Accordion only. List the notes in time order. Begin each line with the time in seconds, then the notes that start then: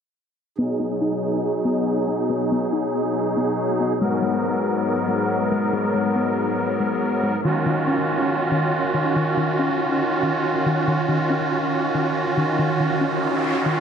0.58 B2 F#3 D#4 G#4
4.01 G#2 B3 A#4
7.44 D#3 C#4 F4 F#4